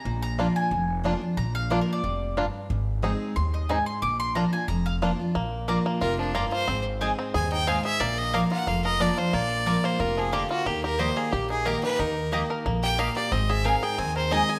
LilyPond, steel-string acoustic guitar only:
\new Staff \with { instrumentName = "Steel-string acoustic guitar" } { \time 4/4 \key bes \mixolydian \tempo 4 = 181 << { r4 <f bes d' f'>4 r4 <f bes d' f'>8 <d' f'>8 | r4 <f bes d' f'>4 r2 | r4 <aes c' ees' aes'>4 r2 | r4 <f bes d' f'>8 <d' f'>8 r4 <f bes d' f'>8 <d' f'>8 |
r4 <f bes d' f'>4 r2 | r4 <aes c' ees' aes'>4 r2 | r4 <f bes d' f'>8 <d' f'>8 r4 <f bes d' f'>8 <d' f'>8 | r4 <f bes d' f'>4 r2 |
r4 <ees bes ees' g'>4 r4 <ees bes ees' g'>8 <ees' g'>8 | r4 <ees bes ees' g'>4 r2 | r4 <aes c' ees' aes'>8 <ees' aes'>8 r4 <aes c' ees' aes'>4 | } \\ { bes,2 f,2 | bes,2 c4 g,4 | aes,2 g,4 aes,4 | bes,2 f,2 |
bes,2 c4 g,4 | aes,2 g,4 aes,4 | bes,2 f,2 | bes,2 c4 d4 |
ees2 bes,2 | ees2 f,4 bes,4 | aes,2 ees2 | } >> }